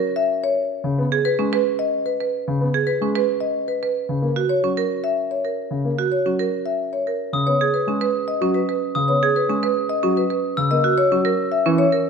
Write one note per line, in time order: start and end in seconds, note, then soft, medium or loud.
0.16 0.34 E5 medium
0.44 0.61 C#5 medium
0.84 1.02 C#3 medium
0.98 1.16 B3 medium
1.12 1.29 G#4 medium
1.25 1.43 B4 medium
1.39 1.56 G#3 medium
1.39 1.56 C#4 medium
1.53 1.70 B4 medium
1.79 1.97 D#5 medium
2.06 2.24 B4 medium
2.21 2.38 B4 soft
2.48 2.65 C#3 medium
2.61 2.78 B3 medium
2.74 2.91 G#4 medium
2.87 3.05 B4 medium
3.01 3.19 G#3 medium
3.01 3.19 C#4 medium
3.15 3.32 B4 medium
3.41 3.59 D#5 medium
3.68 3.86 B4 soft
3.83 4.00 B4 medium
4.09 4.26 C#3 soft
4.22 4.40 A#3 soft
4.36 4.54 F#4 medium
4.49 4.67 C#5 medium
4.63 4.81 F#3 soft
4.63 4.81 C#4 medium
4.77 4.94 A#4 medium
5.04 5.21 E5 medium
5.31 5.48 C#5 soft
5.45 5.62 A#4 soft
5.71 5.88 C#3 soft
5.85 6.02 A#3 soft
5.99 6.16 F#4 medium
6.12 6.29 C#5 soft
6.25 6.43 F#3 soft
6.25 6.43 C#4 soft
6.39 6.56 A#4 medium
6.66 6.83 E5 soft
6.93 7.10 C#5 soft
7.07 7.24 A#4 soft
7.33 7.51 C#3 medium
7.33 7.51 D#6 soft
7.46 7.64 B3 soft
7.46 7.64 C#5 medium
7.61 7.78 G#4 medium
7.74 7.91 B4 soft
7.87 8.05 G#3 soft
7.87 8.05 C#4 medium
8.01 8.18 B4 medium
8.28 8.45 D#5 soft
8.41 8.59 F#3 medium
8.41 8.59 C#4 medium
8.54 8.72 B4 soft
8.69 8.86 B4 medium
8.95 9.13 C#3 medium
8.95 9.13 D#6 medium
9.08 9.26 B3 soft
9.08 9.26 C#5 soft
9.23 9.40 G#4 medium
9.36 9.54 B4 medium
9.49 9.67 G#3 medium
9.49 9.67 C#4 medium
9.63 9.81 B4 medium
9.89 10.07 D#5 medium
10.03 10.21 F#3 medium
10.03 10.21 C#4 medium
10.17 10.35 B4 medium
10.30 10.48 B4 soft
10.57 10.75 C#3 medium
10.57 10.75 E6 medium
10.71 10.89 A#3 medium
10.71 10.89 D#5 medium
10.84 11.02 F#4 medium
10.98 11.15 C#5 medium
11.11 11.29 F#3 medium
11.11 11.29 C#4 medium
11.25 11.43 A#4 medium
11.52 11.70 E5 medium
11.66 11.83 E3 medium
11.66 11.83 C#4 medium
11.78 11.96 C#5 medium
11.92 12.10 A#4 medium